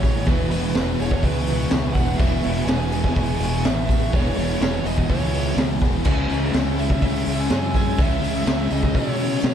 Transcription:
Already playing: A1 E2 B2 E3 G#3 B3 C#4 E4 G#4 B4 C#5 E5 G#5 C#6
0.02 B2 E3 G#4, kick, open hi-hat, tambourine
0.26 E1 E2 B2 E3 G#3 B3 E4 G#4 B4, kick, open hi-hat, tambourine
0.51 E1 B2 E3 B3 B4, open hi-hat, tambourine
0.74 E1 E2 B2 E3 G#3 B3 E4 G#4, snare, open hi-hat, tambourine
0.79 E3
0.99 E1 G#3 B3 E4 G#4 C#5, open hi-hat, tambourine
1.11 kick
1.23 C#2 G#3 B3 C#4 E4 B4, kick, open hi-hat, tambourine
1.27 G#4
1.46 B2 E3 E4 G#4, open hi-hat, tambourine
1.50 G#3 B3
1.70 C#2 E2 B2 E3 G#3 B3 E4, snare, open hi-hat, tambourine
1.75 G#4
1.94 E1 E3 G#4 F#5, kick, open hi-hat, tambourine
1.98 B2
2.17 E1 E2 B2 E3 E5, kick, open hi-hat, tambourine
2.21 E3 G#3 B3 E4 G#4
2.44 E1 E3 B3, open hi-hat
2.48 B2
2.65 E1 E2 E3 G#3 B3 G#5, snare, open hi-hat, tambourine
2.69 E2 B2 E3 E4 G#4
2.91 G#3 B3 E4 G#4, open hi-hat, tambourine
3.04 kick, snare
3.14 E1 G#3 B3 C#4 E4 G#5, kick, open hi-hat, tambourine
3.19 G#4
3.39 E1 E3 G#3 B3 E4 G#4, open hi-hat, tambourine
3.44 B2
3.63 A1 G#3 B3 E4 G#4 E5, snare, open hi-hat, tambourine
3.67 E2 B2 E3
3.88 E3 G#4, kick, open hi-hat, tambourine
3.93 B2
4.11 E1 E2 E3 G#3 B3 E4 G#4 C#5, kick, open hi-hat
4.15 B2 E3, tambourine
4.36 E1 E3 B3 C#5, open hi-hat, tambourine
4.40 B2
4.59 E1 E2 E3 G#3 B3 E4 G#4 C#5, snare, open hi-hat, tambourine
4.63 B2 E3
4.84 E1 G#3 B3 E4 G#4 D#5, open hi-hat, tambourine
4.98 kick
5.08 C#2 G#3 B3 C#4 E4 G#4 C#5, kick, open hi-hat
5.12 tambourine
5.32 E3 G#3 B3 E4 G#4, open hi-hat
5.36 B2
5.56 C#2 E2 B2 G#3 B3 E4 G#4, snare, open hi-hat, tambourine
5.61 E3
5.81 E1 B2 E3 G#4, kick, open hi-hat
5.85 tambourine
6.03 C#2 C#3 E3 G#3 C#4 E4 G#4, kick, tambourine, crash
6.07 C#4 C#5 E6
6.29 C#2 G#3 C#4, open hi-hat, tambourine
6.51 C#2 C#3 G#3 C#4 E4, snare, open hi-hat
6.55 C#4 G#4, tambourine
6.77 C#4 E4 G#4 E5, open hi-hat, tambourine
6.90 kick
7.02 C#2 G#3 C#4 E4 G#4 E5, kick, open hi-hat, tambourine
7.25 C#2 E3 G#3 C#4 E4 G#4, open hi-hat, tambourine
7.40 G#5
7.48 F#2 C#3 G#3 C#4 E4 G#4, snare, open hi-hat, tambourine
7.74 G#3 C#4 G#4 G#5, kick, open hi-hat, tambourine
7.96 C#2 C#3 E3 G#3 C#4 E4 G#4, kick, open hi-hat, tambourine
8.02 E5
8.22 C#2 G#3 C#4, open hi-hat, tambourine
8.45 C#2 C#3 G#3 C#4 E4 G#4, snare, open hi-hat, tambourine
8.68 C#2 C#4 E4 G#4, open hi-hat, tambourine
8.73 D#5
8.83 kick
8.94 B2 G#3 C#4 E4 G#4 C#5, kick, open hi-hat, tambourine
9.17 E3 G#3 C#4 E4 G#4, open hi-hat, tambourine
9.41 B2 C#3 G#3 C#4 E4, snare, open hi-hat, tambourine
9.46 G#4 C#5

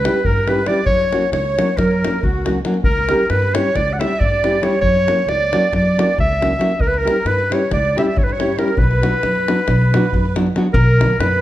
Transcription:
Already playing: B4
0.04 G3 C#4 E4 G4, davul high
0.25 G2 A#4, davul low
0.37 davul high
0.47 G3 C#4 E4 G4 B4, davul high
0.66 G3 C#4 E4 G4 D5, davul high
0.77 davul high
0.86 F#2 C#5, davul low
1.01 davul high
1.12 F#3 A#3 C#4 F#4, davul high
1.22 davul high
1.32 C#2 C#5, davul high
1.45 davul high
1.58 F#3 A#3 C#4 F#4, davul high
1.68 davul high
1.77 F#2 A#4, davul high, davul low
1.91 davul high
2.03 F#3 A#3 C#4 F#4, davul high
2.13 davul high
2.23 C#2 F#4, davul low
2.45 F#3 A#3 C#4 F#4, davul high
2.65 F#3 A#3 C#4 F#4, davul high
2.74 davul high
2.84 C#2 A#4, davul low
2.97 davul high
3.09 G3 C#4 E4 G4, davul high
3.19 davul high
3.30 G2 B4, davul high
3.42 davul high
3.55 G3 C#4 E4 G4 C#5, davul high
3.75 C#2 D5, davul high, davul low
3.88 davul high
3.93 F#5
3.97 G3 C#4 E4 G4 E5 F#5, davul high
4.05 E5
4.20 G2 D5, davul low
4.24 D5
4.32 davul high
4.44 G3 C#4 E4 G4, davul high
4.62 G3 C#4 E4 G4 C#5, davul high
4.66 C#5
4.73 davul high
4.81 F#2 C#5, davul low
4.95 davul high
5.07 F#3 A#3 C#4 F#4, davul high
5.19 davul high
5.27 C#2 D5, davul high
5.41 davul high
5.53 F#3 A#3 C#4 F#4, davul high
5.73 F#2 D5, davul high, davul low
5.86 davul high
5.98 F#3 A#3 C#4 F#4, davul high
6.18 C#2 E5, davul low
6.41 F#3 A#3 C#4 F#4, davul high
6.59 F#3 A#3 C#4 F#4, davul high
6.72 davul high
6.79 C#2 A#4, davul low
6.87 B4
6.94 A#4, davul high
7.04 G3 C#4 E4 G4, davul high
7.16 davul high
7.25 G2 B4, davul high
7.39 davul high
7.50 G3 C#4 E4 G4 C#5, davul high
7.71 C#2 D5, davul high, davul low
7.85 davul high
7.96 G3 C#4 E4 G4 E5, davul high
8.03 E5
8.07 E5
8.16 G2 C#5, davul low
8.24 B4
8.30 C#5, davul high
8.39 G3 C#4 E4 G4, davul high
8.58 G3 C#4 E4 G4 A#4, davul high
8.68 davul high
8.77 B1 B4, davul low
8.91 davul high
9.02 F#3 B3 D4 F#4, davul high
9.14 davul high
9.23 F#2, davul high
9.35 davul high
9.48 F#3 B3 D4 F#4, davul high
9.59 davul high
9.68 B1, davul high, davul low
9.82 davul high
9.94 F#3 B3 D4 F#4, davul high
10.04 davul high
10.13 F#2, davul low
10.25 davul high
10.36 F#3 B3 D4 F#4, davul high
10.47 davul high
10.56 F#3 B3 D4 F#4, davul high
10.73 B1 A#4, davul low
11.00 D3 F#3 B3 D4 F#4, davul high
11.10 davul high
11.19 F#2 B4, davul high

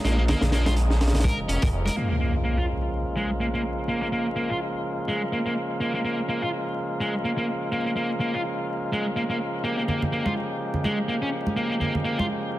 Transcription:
Already playing: C#3 F3 G#3 A#3 D#4
0.04 A#1 A#3, snare, closed hi-hat
0.18 A#3
0.28 A#3, snare, closed hi-hat, low conga
0.41 A#1, snare, closed hi-hat, low conga
0.52 A#3, snare, closed hi-hat
0.66 F4, snare, closed hi-hat, high conga
0.76 closed hi-hat
0.90 snare
1.01 snare, closed hi-hat
1.07 snare, closed hi-hat
1.13 snare, closed hi-hat, low conga
1.20 snare, closed hi-hat
1.24 A#4, kick, closed hi-hat, high conga
1.38 F1
1.48 F1 C#4, closed hi-hat
1.62 F1 A#4, kick, closed hi-hat
1.73 F1
1.86 A#4, closed hi-hat, high conga
1.96 C#3 F3 G#3 A#3 F4, impact
2.10 A#3
2.20 A#3
2.44 A#3
2.58 F4
3.16 G#3
3.40 A#3
3.54 A#3
3.88 A#3
4.02 A#3
4.12 A#3
4.36 A#3
4.50 F4
5.08 G#3
5.32 A#3
5.46 A#3
5.80 A#3
5.94 A#3
6.05 A#3
6.29 A#3
6.42 F4
7.00 G#3
7.24 A#3
7.38 A#3
7.72 A#3
7.86 A#3
7.96 A#3
8.20 A#3
8.34 F4
8.92 G#3
9.16 A#3
9.30 A#3
9.64 A#3 G4
9.78 A#3
9.88 A#3, low conga
10.02 low conga
10.12 A#3
10.26 F4, high conga
10.74 low conga
10.84 G#3, high conga
11.08 A#3
11.22 C#4
11.47 high conga
11.57 A#3
11.70 A#3
11.80 A#3, low conga
11.95 low conga
12.05 A#3
12.19 F4, high conga

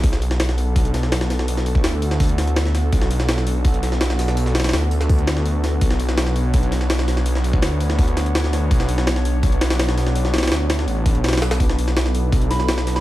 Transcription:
0.03 B1 B3 D4 F#4 A4, kick, open hi-hat
0.13 snare
0.22 open hi-hat
0.31 snare
0.40 snare, open hi-hat
0.49 snare
0.58 open hi-hat
0.76 kick, open hi-hat
0.85 closed hi-hat
0.94 snare, open hi-hat
1.03 snare
1.12 snare, open hi-hat
1.21 snare
1.30 snare, open hi-hat
1.39 snare
1.48 open hi-hat
1.57 snare
1.66 open hi-hat
1.75 kick
1.84 D2, snare, open hi-hat
2.02 open hi-hat
2.11 snare
2.20 kick, open hi-hat
2.29 closed hi-hat
2.38 snare, open hi-hat
2.47 closed hi-hat
2.56 snare, open hi-hat
2.65 snare
2.75 snare, open hi-hat
2.92 B1, kick, open hi-hat
3.01 snare
3.11 open hi-hat
3.20 snare
3.28 snare, open hi-hat
3.38 snare
3.47 open hi-hat
3.65 kick, open hi-hat
3.74 closed hi-hat
3.83 snare, open hi-hat
3.92 snare
4.01 snare, open hi-hat
4.10 snare
4.19 snare, open hi-hat
4.28 snare
4.37 open hi-hat
4.46 snare
4.55 snare, open hi-hat
4.60 snare, open hi-hat
4.64 snare, open hi-hat
4.69 snare, open hi-hat
4.73 D2, snare, open hi-hat
4.91 open hi-hat
5.01 snare
5.09 kick, open hi-hat
5.19 closed hi-hat
5.27 snare, open hi-hat
5.37 snare
5.46 open hi-hat
5.64 snare, open hi-hat
5.81 B1 C#5, kick, open hi-hat
5.91 snare
6.00 open hi-hat
6.09 snare
6.18 snare, open hi-hat
6.27 snare
6.36 open hi-hat
6.54 kick, open hi-hat
6.63 closed hi-hat
6.72 snare, open hi-hat
6.81 snare
6.90 snare, open hi-hat
6.99 snare
7.08 snare, open hi-hat
7.17 snare
7.26 open hi-hat
7.35 snare
7.44 open hi-hat
7.53 kick
7.62 D2, snare, open hi-hat
7.81 open hi-hat
7.90 snare
7.99 kick, open hi-hat
8.08 closed hi-hat
8.17 snare, open hi-hat
8.26 closed hi-hat
8.35 snare, open hi-hat
8.44 snare
8.53 snare, open hi-hat
8.71 B1, kick, open hi-hat
8.80 snare
8.89 open hi-hat
8.98 snare
9.07 snare, open hi-hat
9.16 snare
9.25 open hi-hat
9.43 kick, open hi-hat
9.52 closed hi-hat
9.61 snare, open hi-hat
9.70 snare, open hi-hat
9.79 snare, open hi-hat
9.89 snare
9.97 snare, open hi-hat
10.07 snare
10.15 open hi-hat
10.25 snare
10.34 snare, open hi-hat
10.38 snare, open hi-hat
10.43 snare, open hi-hat
10.47 snare, open hi-hat
10.51 D2, snare, open hi-hat
10.70 snare, open hi-hat
10.79 snare
10.87 A1, open hi-hat
11.06 kick, open hi-hat
11.15 B1, closed hi-hat
11.24 snare, open hi-hat
11.29 snare, open hi-hat
11.33 snare, open hi-hat
11.38 snare, open hi-hat
11.42 snare, open hi-hat
11.51 snare, open hi-hat
11.60 B1 E4 A4, kick, open hi-hat
11.70 snare
11.79 open hi-hat
11.88 snare
11.97 snare, open hi-hat
12.06 snare
12.15 open hi-hat
12.32 kick, open hi-hat
12.41 closed hi-hat
12.51 B5, snare, open hi-hat
12.59 B5, snare
12.69 snare, open hi-hat
12.78 snare
12.87 snare, open hi-hat
12.96 B5, snare

